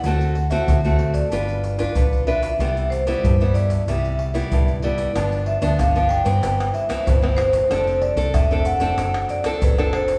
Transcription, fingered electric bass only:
\new Staff \with { instrumentName = "Fingered electric bass" } { \clef bass \time 4/4 \key c \major \tempo 4 = 94 d,4 d,4 g,,4 b,,4 | c,4 g,4 c,4 c,4 | g,,8. d,16 g,,8. g,16 g,,8 r8 g,,4 | f,,8. c,16 f,,8. f,,16 fis,,8 r8 fis,,4 | }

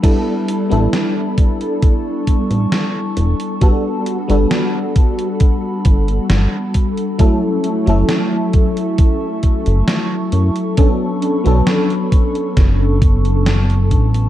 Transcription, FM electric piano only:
\new Staff \with { instrumentName = "FM electric piano" } { \time 4/4 \key a \mixolydian \tempo 4 = 67 <g b d' e' a'>8. <g b d' e' a'>2.~ <g b d' e' a'>16 | <g b d' fis' a'>8. <g b d' fis' a'>2.~ <g b d' fis' a'>16 | <fis a cis' e' a'>8. <fis a cis' e' a'>2.~ <fis a cis' e' a'>16 | <fis b cis' d' a'>8. <fis b cis' d' a'>2.~ <fis b cis' d' a'>16 | }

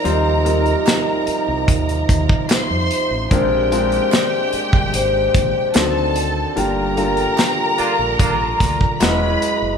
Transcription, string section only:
\new Staff \with { instrumentName = "String section" } { \time 4/4 \key ees \major \tempo 4 = 74 <bes' bes''>2. <c'' c'''>4 | <g' g''>2. <a' a''>4 | <bes' bes''>2. <b' b''>4 | }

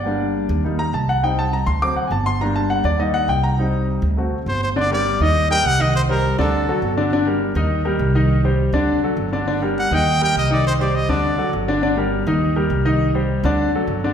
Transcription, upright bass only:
\new Staff \with { instrumentName = "Upright bass" } { \clef bass \time 4/4 \key g \minor \tempo 4 = 204 g,,4. ees,4. c,4~ | c,4. d,4. g,,4~ | g,,4. ees,4. c,4~ | c,4. d,4. g,,4~ |
g,,4. ees,4. c,4~ | c,4. d,4. g,,4~ | g,,4. ees,4. c,4~ | c,4. d,4. g,,4~ |
g,,4. ees,4. c,4~ | c,4. d,4. g,,4~ | g,,4. ees,4. c,4~ | c,4. d,4. g,,4 | }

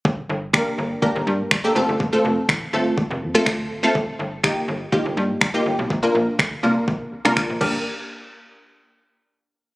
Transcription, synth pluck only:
\new Staff \with { instrumentName = "Synth pluck" } { \time 4/4 \key g \minor \tempo 4 = 123 r4 <bes d' g' bes'>8. r16 <bes d' g' bes'>4 r16 <bes d' g' a'>16 <a c' f' a'>8 | r16 <a c' f' a'>4 r16 <a c' f' a'>4 r16 <a c' f' a'>8. r16 <a c' f' a'>16 | r4 <bes ees' f' g'>8. r16 <bes ees' f' g'>4 r16 <bes ees' f' g'>8. | r16 <bes d' f' bes'>4 r16 <bes d' f' bes'>4 r16 <bes d' f' bes'>8. <bes d' g' bes'>8 |
r1 | }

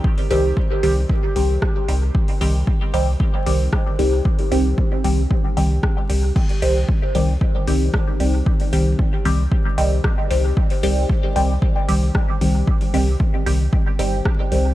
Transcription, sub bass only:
\new Staff \with { instrumentName = "Sub bass" } { \clef bass \time 4/4 \key c \minor \tempo 4 = 114 r8 c,8 r8 c,8 r8 c,8 r8 c,8 | r8 c,8 r8 c,8 r8 c,8 r8 c,8 | r8 c,8 r8 c,8 r8 c,8 r8 c,8 | r8 c,8 r8 c,8 r8 c,8 r8 c,8 |
r8 c,8 r8 c,8 r8 c,8 r8 c,8 | r8 c,8 r8 c,8 r8 c,8 r8 c,8 | r8 c,8 r8 c,8 r8 g,,8 r8 c,8 | }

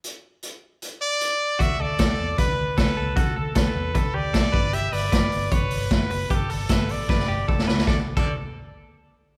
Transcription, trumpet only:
\new Staff \with { instrumentName = "Trumpet" } { \time 4/4 \key d \major \tempo 4 = 153 r2 r8 d''4. | e''8 d''4. b'4 b'4 | a'8 a'8 b'4 a'8 d''4. | e''8 d''4. b'4 b'4 |
a'4 b'8 d''2 r8 | d''16 r8 d''8 r2 r8. | }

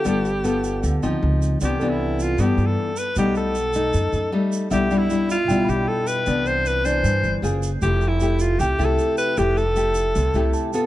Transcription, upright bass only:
\new Staff \with { instrumentName = "Upright bass" } { \clef bass \time 4/4 \key c \major \tempo 4 = 155 g,,2 d,8 d,16 r16 des,4 | c,2 g,8 g,8 r4 | b,,2 fis,8 fis,8 r4 | b,,2 b,,8 b,,8 r4 |
c,2 g,8 g,,16 r16 fis,,4 | f,,2 c,8 c,8 r4 | f,,2 c,8 c,8 r4 | }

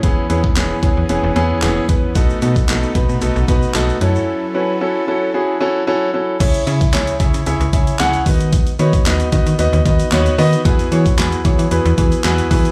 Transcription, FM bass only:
\new Staff \with { instrumentName = "FM bass" } { \clef bass \time 4/4 \key e \major \tempo 4 = 113 e,,8 e,8 e,,8 e,16 e,16 e,,16 e,,16 e,8 e,,8 e,8 | b,,8 b,8 b,,8 b,16 b,16 b,,16 b,,16 b,8 b,,8 fis,8 | r1 | cis,8 cis8 cis,8 cis16 cis16 cis,16 cis,16 cis8 cis,8 dis8~ |
dis8 dis8 dis,8 dis16 dis16 dis,16 dis,16 dis8 dis,8 dis8 | e,8 e8 e,8 e16 e16 e,16 e,16 e8 e,8 e8 | }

